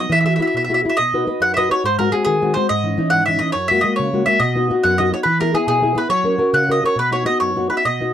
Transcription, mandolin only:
0.00 0.11 D#5 medium
0.12 0.19 E5 medium
0.21 0.24 E5 medium
0.26 0.33 E5 medium
0.36 0.41 E5 medium
0.42 0.46 E5 soft
0.47 0.54 E5 soft
0.57 0.63 E5 medium
0.64 0.71 E5 soft
0.74 0.80 E5 medium
0.89 0.97 E5 medium
0.97 1.42 D#5 medium
1.42 1.52 F#5 medium
1.54 1.71 D#5 medium
1.54 1.57 E5 medium
1.71 1.85 C#5 medium
1.85 1.98 C5 medium
1.99 2.11 A#4 medium
2.12 2.23 G#4 medium
2.25 2.55 G#4 medium
2.54 2.67 C5 medium
2.69 3.08 D#5 medium
3.10 3.25 F#5 medium
3.26 3.38 E5 medium
3.39 3.52 D#5 medium
3.52 3.67 C#5 medium
3.68 3.81 E5 medium
3.81 3.95 D#5 medium
3.96 4.27 C#5 medium
4.26 4.39 E5 medium
4.40 4.84 D#5 medium
4.83 4.98 F#5 medium
4.98 5.11 D#5 medium
5.14 5.19 C#5 medium
5.23 5.38 B4 medium
5.40 5.53 A#4 medium
5.55 5.67 G#4 medium
5.68 5.98 G#4 medium
5.98 6.09 B4 medium
6.10 6.50 C#5 medium
6.54 6.69 F#5 medium
6.71 6.84 D#5 medium
6.86 6.98 C#5 medium
6.99 7.12 B4 medium
7.12 7.25 C#5 medium
7.26 7.39 D#5 medium
7.40 7.67 C#5 medium
7.70 7.75 B4 medium
7.77 7.84 E5 medium
7.85 8.13 D#5 medium

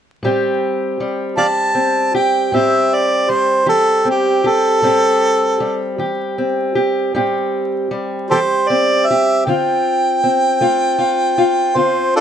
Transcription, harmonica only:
1.38 1.47 D5 medium
1.38 1.46 F5 medium
1.38 2.13 A5 medium
2.16 2.58 G5 medium
2.56 2.96 E5 medium
2.94 3.31 D5 medium
3.30 3.68 C5 medium
3.69 4.06 A4 medium
4.10 4.48 G4 medium
4.47 5.96 A4 loud
8.31 8.38 G4 medium
8.31 8.39 A4 medium
8.31 8.70 C5 loud
8.69 9.08 D5 medium
9.07 9.45 E5 medium
9.46 11.79 G5 medium
11.78 12.15 C5 medium
12.16 12.21 D4 medium
12.16 12.21 F4 medium
12.16 12.21 A4 loud

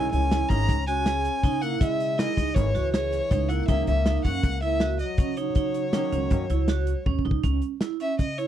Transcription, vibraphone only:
0.00 0.15 E4 medium
0.31 0.42 E4 medium
0.50 0.71 D#4 medium
0.88 0.98 F#4 medium
1.06 1.27 G#4 medium
1.44 1.54 D#4 medium
1.62 1.73 E4 medium
1.81 2.02 E4 medium
2.18 2.29 E4 medium
2.37 2.58 D#4 medium
2.75 2.85 F#4 medium
2.94 3.14 G#4 medium
3.31 3.41 D#4 medium
3.49 3.60 E4 medium
3.68 3.89 D#4 medium
4.06 4.16 D#4 medium
4.25 4.45 C#4 medium
4.63 4.73 E4 medium
4.81 5.02 F#4 medium
5.19 5.29 C#4 medium
5.38 5.48 D#4 medium
5.56 5.77 D#4 medium
5.94 6.04 D#4 medium
6.12 6.33 C#4 medium
6.50 6.61 E4 medium
6.69 6.90 F#4 medium
7.07 7.17 C#4 medium
7.25 7.35 D#4 medium
7.43 7.64 C#4 medium
7.82 7.92 E4 medium
8.00 8.21 C#4 medium
8.38 8.47 E4 medium

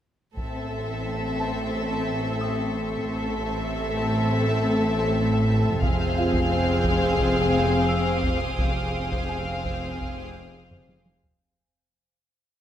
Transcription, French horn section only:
0.36 3.07 C4 soft
0.36 3.07 A4 soft
3.12 5.79 C4 medium
3.12 5.80 A4 soft
5.84 8.40 C4 medium
5.84 8.40 G#4 medium
8.57 11.04 C4 soft
8.57 11.04 G#4 soft

